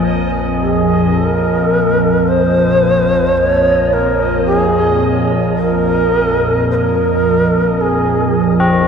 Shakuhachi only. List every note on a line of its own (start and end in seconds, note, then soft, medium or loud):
0.61 1.19 G#4 medium
1.18 2.29 A#4 loud
2.28 3.39 C5 loud
3.37 3.94 C#5 loud
3.93 4.45 A#4 loud
4.46 4.57 G4 medium
4.57 5.28 G#4 medium
5.57 6.65 A#4 loud
6.71 7.82 A#4 loud
6.71 6.76 C5 medium
7.81 8.65 G#4 medium